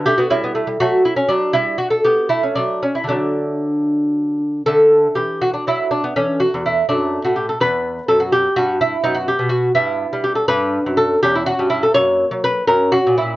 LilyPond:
<<
  \new Staff \with { instrumentName = "Lute" } { \time 6/8 \key d \major \tempo 4. = 82 g'16 fis'16 <g e'>4 <a fis'>8 e'16 cis'16 <fis d'>8 | <g e'>8 fis'16 a'16 <b g'>8 e'16 cis'16 <fis d'>8 cis'16 e'16 | <fis d'>2~ <fis d'>8 r8 | a'4 g'8 fis'16 d'16 e'8 d'16 b16 |
cis'8 fis'8 e'8 d'8. fis'16 g'16 a'16 | b'4 a'16 fis'16 g'8 fis'8 e'8 | ees'16 fis'16 g'8 fis'8 e'4 g'16 a'16 | \key fis \phrygian b'4 a'8 g'16 e'16 fis'8 e'16 a'16 |
cis''4 b'8 ais'8 fis'8 e'8 | }
  \new Staff \with { instrumentName = "Lute" } { \clef bass \time 6/8 \key d \major << { r2. | r2. | r2. | a2. |
a4. a4. | b2. | b4. b4. | \key fis \phrygian d'4. cis'4. |
ais4. cis'4. | } \\ { a16 b16 cis'16 b16 a16 g16 fis4. | r4. a4. | <d a>2. | d4 e4 fis4 |
e8. e,8. fis,8. a,8. | e,4 fis,4 g,4 | fis,8. b,8. g,8. g8. | g,8. fis,8. e,8. g,8. |
fis,8. fis8. fis,8. ais,8. | } >> }
>>